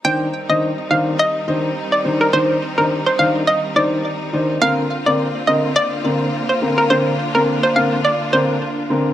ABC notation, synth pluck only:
X:1
M:4/4
L:1/16
Q:"Swing 16ths" 1/4=105
K:Cm
V:1 name="Synth pluck"
g z2 e z2 f z e3 z2 d z B | c2 z B z c f z e z d z4 z | f z2 d z2 e z d3 z2 c z B | c2 z B z c f z d z c z4 z |]